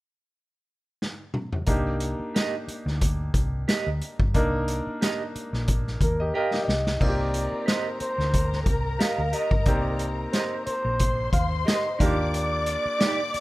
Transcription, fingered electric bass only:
1.68 C2
2.20 muted fingered electric bass stroke
2.68 muted fingered electric bass stroke
2.86 D2
3.34 C2
3.87 D2
4.20 G1
4.35 C2
4.87 muted fingered electric bass stroke
5.35 muted fingered electric bass stroke
5.53 A#1
6.01 D#2
6.68 C2
7.01 C2
7.52 muted fingered electric bass stroke
8.01 muted fingered electric bass stroke
8.18 D2
8.66 C2
9.18 D2
9.51 G1
9.66 C2
10.67 muted fingered electric bass stroke
10.85 A#1
11.33 D#2
12.01 D#2
12.85 muted fingered electric bass stroke
13.34 muted fingered electric bass stroke

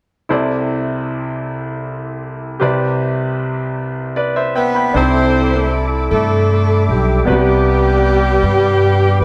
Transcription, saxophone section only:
4.56 B4
4.96 E4 A4 C5
6.11 D4 E4 A4
6.90 G4
7.28 B3 D4 G4
9.21 B4

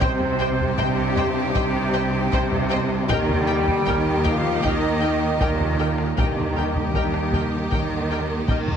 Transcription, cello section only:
0.01 C3
0.78 C3
1.56 C3
2.33 C3
3.10 D#3
3.88 D#3
4.65 D#3
5.41 D#3
6.18 D#3
6.95 D#3
7.71 D#3
8.48 D#3

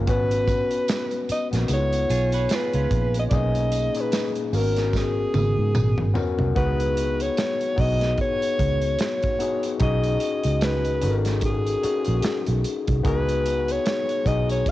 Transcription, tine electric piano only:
0.07 B3 C#4 F#4 B4
1.52 B3 C#4 F#4 A#4
1.68 B3 D#4 E4 G#4
1.76 F4
3.31 A#3 C#4 D#4 G#4
3.94 A#2 C#4 D#4 G#4
4.52 A#3 C#4 F#4 A#4
4.59 B3
6.14 B3 C#4 F#4 A#4
6.55 B3 D#4 F#4 G#4
7.76 B3 D#4 F#4 G#4
9.39 B3 D#4 F#4 G#4
9.79 C#4 D#4 F#4 G#4
11.02 C#4 D#4 F#4 A4
11.10 A#4
11.83 C#4 D#4 F#4 G#4
13.03 B3 D#4 F#4 G#4
14.25 B3 D#4 F#4 G#4

